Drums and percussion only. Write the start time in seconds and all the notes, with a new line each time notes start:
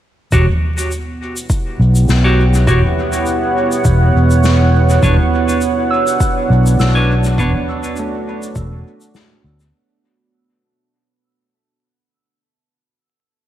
0.32 kick, mid tom, shaker
0.49 mid tom
0.78 shaker
0.91 shaker
1.37 shaker
1.50 kick, shaker
1.95 shaker
2.09 snare, shaker
2.54 shaker
2.67 kick, mid tom, shaker
2.84 mid tom
3.13 shaker
3.26 shaker
3.72 shaker
3.85 kick, shaker
4.31 shaker
4.44 snare, shaker
4.89 shaker
5.03 kick, mid tom, shaker
5.19 mid tom
5.49 shaker
5.61 shaker
6.07 shaker
6.20 kick, shaker
6.66 shaker
6.80 snare, shaker
7.24 shaker
7.38 kick, mid tom, shaker
7.54 mid tom
7.84 shaker
7.96 shaker
8.43 shaker
8.56 kick, shaker
9.01 shaker
9.15 snare, shaker
9.60 shaker